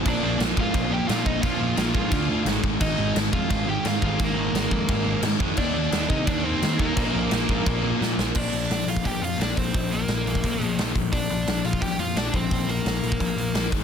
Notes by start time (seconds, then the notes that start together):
0.05 A#1 A#2 F3 A#3 D4 D5, kick, crash
0.21 A#1 A#2 F3 A#3
0.38 A#1 A#2 F3 A#3, snare, crash
0.42 A#2 F3 A#3
0.57 G#2 A#2 F3 A#3 F4 F5, kick
0.74 A#1 A#2 F3 A#3, kick, crash
0.92 A#2 F3 A#3 G4 G5
1.08 A#2 F3 A#3 F4 F5, snare, crash
1.25 A#1 A#2 F3 A#3 D#4 D#5, kick
1.41 A#1 A#2 F3 A#3 F4 F5, kick, crash
1.60 A#1 A#2 F3 A#3
1.77 A#1 A#2 F3 A#3, snare, crash
1.94 G#2 A#2 F3 A#3, kick
2.10 D2 D3 A3 D4, kick, crash
2.28 D3 A3 D4
2.45 G#1 G#2 D#3 G#3, snare, crash
2.63 G#1 G#2 D#3 G#3, kick
2.80 G#1 G#2 D#3 G#3 D#4 D#5, kick, crash
2.98 G#1 G#2 D#3 G#3
3.15 G#1 G#2 D#3 G#3, snare, crash
3.33 F2 G#2 D#3 G#3 F4 F5, kick
3.49 G#1 G#2 D#3 G#3, kick, crash
3.65 G#2 D#3 G#3 G4
3.70 G5
3.85 G#2 D#3 G#3 F4 F5, snare, crash
4.02 G#1 G#2 D#3 G#3 F4, kick
4.06 F5
4.19 G#1 G#2 D#3 G#3 A#3, kick, crash
4.24 A#4
4.35 G#1 G#2 D#3 G#3
4.53 G#1 G#2 D#3 G#3, snare, crash
4.71 F2 G#2 D#3 G#3, kick
4.89 G#1 G#2 D#3 G#3, kick, crash
5.06 G#2 D#3 G#3
5.22 G#2 D#3 G#3, snare, crash
5.40 F2 G#2 D#3 G#3, kick
5.57 D#2 D#3 A#3 D4 D#4 D5, kick, crash
5.74 D#2 D#3 A#3 D#4
5.92 D#2 D#3 A#3 D#4, snare, crash
6.09 C3 D#3 A#3 D#4 D#5, kick
6.26 D#2 D#3 A#3 D4 D5, kick, crash
6.30 D#4
6.44 D#3 A#3 C4 D#4 C5
6.62 D#3 A#3 D#4, snare, crash
6.77 D#2 D#3 A#3 D#4 A#4, kick
6.96 A#1 A#2 F3 A#3, kick, crash
7.13 A#1 A#2 F3 A#3
7.31 A#1 A#2 F3 A#3, snare, crash
7.47 G#2 A#2 F3 A#3, kick
7.66 A#1 A#2 F3 A#3, kick, crash
7.82 A#2 F3 A#3
8.01 A#2 F3 A#3, snare
8.17 A#1 A#2 F3 A#3, snare
8.34 A#1 A#2 F3 A#3 D4, kick, crash
8.39 D5
8.53 A#1 A#2 F3, open hi-hat
8.70 A#1 A#2 F3, snare, open hi-hat
8.86 A#1 A#2 F3 F4, open hi-hat
8.90 F5
8.96 kick
9.04 A#1 A#2 F3 G4 G5, kick, open hi-hat
9.22 F2 A#2 F3 F4 F5, open hi-hat
9.37 A#1 A#2 F3 A#3 D4, open hi-hat
9.41 D5, snare
9.57 A#1 A#2 F3 C4 C5, kick, open hi-hat
9.74 A#1 A#2 F3, kick, open hi-hat
9.91 A#2 F3 A#3 A#4, open hi-hat
10.08 A#1 A#2 F3, snare, open hi-hat
10.25 A#1 A#2 F3, open hi-hat
10.35 kick
10.44 A#1 A#2 F3, kick, open hi-hat
10.60 A#1 A#2 G#4, open hi-hat
10.64 F3
10.77 A#1 A#2 F3 A#3, snare, open hi-hat
10.95 A#1 A#2 F3, kick, open hi-hat
11.12 A#1 A#2 F3 D4 D5, kick, open hi-hat
11.29 A#1 A#2 F3, open hi-hat
11.47 A#1 A#2 F3, snare, open hi-hat
11.64 A#1 A#2 F3 F4 F5, open hi-hat
11.73 kick
11.81 A#1 A#2 F3 G4 G5, kick, open hi-hat
11.98 F2 A#2 F3 F4 F5, open hi-hat
12.15 A#1 A#2 F3 A#3 D4 D5, snare, open hi-hat
12.33 A#1 A#2 F3 C4 C5, kick, open hi-hat
12.51 A#1 A#2 F3, kick, open hi-hat
12.67 A#2 F3 A#3 A#4, open hi-hat
12.85 A#1 A#2 F3, snare, open hi-hat
13.03 A#1 A#2 F3, open hi-hat
13.12 kick
13.20 A#1 A#2 F3, kick, open hi-hat
13.36 A#1 A#2 F3, open hi-hat
13.54 A#1 A#2 F3 A#3, snare, open hi-hat
13.71 G#1 G#2 D#3 G#3, kick, open hi-hat